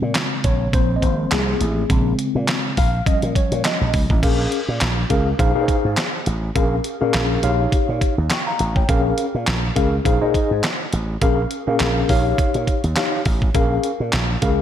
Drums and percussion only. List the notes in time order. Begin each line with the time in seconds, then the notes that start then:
0.15 snare, clap, closed hi-hat
0.44 kick, closed hi-hat
0.73 kick, closed hi-hat
1.02 kick, closed hi-hat
1.31 snare, clap, closed hi-hat
1.61 closed hi-hat
1.90 kick, closed hi-hat
2.19 closed hi-hat
2.48 snare, clap, closed hi-hat
2.77 kick, open hi-hat
3.06 kick, closed hi-hat
3.22 closed hi-hat
3.35 kick, closed hi-hat
3.52 closed hi-hat
3.64 snare, clap, closed hi-hat
3.94 kick, open hi-hat
4.10 kick
4.23 kick, closed hi-hat, crash
4.52 closed hi-hat
4.81 snare, clap, closed hi-hat
5.10 kick, closed hi-hat
5.39 kick, closed hi-hat
5.68 kick, closed hi-hat
5.97 snare, clap, closed hi-hat
6.26 closed hi-hat
6.56 kick, closed hi-hat
6.84 closed hi-hat
7.14 snare, clap, closed hi-hat
7.43 closed hi-hat
7.72 kick, closed hi-hat
8.01 kick, closed hi-hat
8.30 snare, clap, closed hi-hat
8.59 closed hi-hat
8.76 kick
8.89 kick, closed hi-hat
9.18 closed hi-hat
9.47 snare, clap, closed hi-hat
9.76 kick, closed hi-hat
10.05 kick, closed hi-hat
10.34 kick, closed hi-hat
10.63 snare, clap, closed hi-hat
10.93 closed hi-hat
11.22 kick, closed hi-hat
11.51 closed hi-hat
11.80 snare, clap, closed hi-hat
12.09 kick, open hi-hat
12.38 kick, closed hi-hat
12.54 closed hi-hat
12.67 kick, closed hi-hat
12.84 closed hi-hat
12.96 snare, clap, closed hi-hat
13.25 kick, open hi-hat
13.42 kick
13.55 kick, closed hi-hat
13.84 closed hi-hat
14.13 snare, clap, closed hi-hat
14.42 kick, closed hi-hat